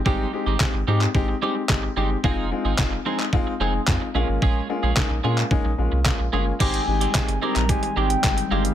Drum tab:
CC |----------------|----------------|----------------|x---------------|
HH |----------------|----------------|----------------|xx-xxx-xxx-xxx-x|
CP |----x--x----x---|----x--x----x---|----x--x----x---|----x--x----x---|
SD |----o-------o---|----o-------o---|----o-------o---|----o-------o---|
BD |o---o---o---o---|o---o---o---o---|o---o---o---o---|o---o---o---o---|